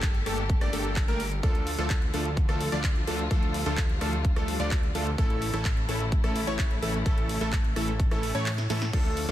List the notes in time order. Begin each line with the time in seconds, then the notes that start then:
Already playing: G1 D3 G4 A4
0.02 kick, clap, closed hi-hat
0.15 closed hi-hat
0.26 G1 A3 A#3 D4 G4 A4, cross-stick, open hi-hat
0.50 kick, closed hi-hat
0.61 G1 A3 A#3 D4 G4 D5, cross-stick, closed hi-hat
0.73 G1 A3 A#3 D4 G4 A4, open hi-hat
0.85 closed hi-hat
0.96 kick, clap, closed hi-hat
1.08 G1 A3 A#3 D4 G4 A#4, closed hi-hat
1.20 open hi-hat
1.32 closed hi-hat
1.43 D2 F3 A3 D4 F4 A4, kick, closed hi-hat
1.55 closed hi-hat
1.67 open hi-hat
1.78 D2 F3 A3 D4 F4 A4, closed hi-hat
1.90 kick, clap, closed hi-hat
2.02 closed hi-hat
2.14 D2 F3 A3 D4 F4 A4, open hi-hat
2.25 closed hi-hat
2.37 kick, closed hi-hat
2.49 D2 F3 A3 D4 F4 A4, cross-stick, closed hi-hat
2.61 open hi-hat
2.72 D2 F3 A3 D4 F4 D5
2.84 kick, clap, closed hi-hat
2.96 closed hi-hat
3.07 D2 F3 A3 D4 F4 A4, open hi-hat
3.19 closed hi-hat
3.31 D2 F3 G3 A3 D4 F4 A4, kick, closed hi-hat
3.43 closed hi-hat
3.54 open hi-hat
3.66 D2 F3 A3 D4 F4 A4, closed hi-hat
3.77 kick, clap, closed hi-hat
3.89 closed hi-hat
4.01 D2 F3 A3 D4 F4 A4, cross-stick, open hi-hat
4.13 closed hi-hat
4.25 kick, closed hi-hat
4.36 D2 F3 A3 D4 F4 A4, cross-stick, closed hi-hat
4.48 open hi-hat
4.60 D2 F3 A3 D4 F4 D5, closed hi-hat
4.71 kick, clap, closed hi-hat
4.83 closed hi-hat
4.95 D2 F3 A3 D4 F4 A4, open hi-hat
5.18 A1 C#3 E3 A3 C#4 E4 A4, kick, closed hi-hat
5.30 closed hi-hat
5.42 open hi-hat
5.53 A1 E3 A3 C#4 E4 A4, closed hi-hat
5.65 kick, clap, closed hi-hat
5.77 closed hi-hat
5.89 A1 E3 A3 C#4 E4 A4, open hi-hat
6.00 closed hi-hat
6.12 kick, closed hi-hat
6.24 A1 E3 A3 C#4 E4 A4, cross-stick, closed hi-hat
6.36 open hi-hat
6.47 A1 E3 A3 C#4 E4 C#5, closed hi-hat
6.59 kick, clap, closed hi-hat
6.71 closed hi-hat
6.82 A1 E3 A3 C#4 E4 A4, open hi-hat
6.94 closed hi-hat
7.06 A1 E3 A3 C#4 E4 A4, kick, closed hi-hat
7.18 closed hi-hat
7.29 open hi-hat
7.41 A1 E3 A3 C#4 E4 A4
7.53 kick, clap, closed hi-hat
7.65 closed hi-hat
7.76 A1 E3 A3 C#4 E4 A4, cross-stick, open hi-hat
7.88 closed hi-hat
8.00 kick, closed hi-hat
8.11 A1 E3 A3 C#4 E4 A4, cross-stick, closed hi-hat
8.23 open hi-hat
8.35 A2 E3 A3 C#4 E4 C#5, closed hi-hat
8.46 clap, open hi-hat
8.58 snare, closed hi-hat
8.70 A2 E3 A3 C#4 E4 A4, snare, open hi-hat
8.82 snare, closed hi-hat
8.93 D2 F3 A3 D4 F4 A4, kick, closed hi-hat, crash, ride
9.05 closed hi-hat
9.17 open hi-hat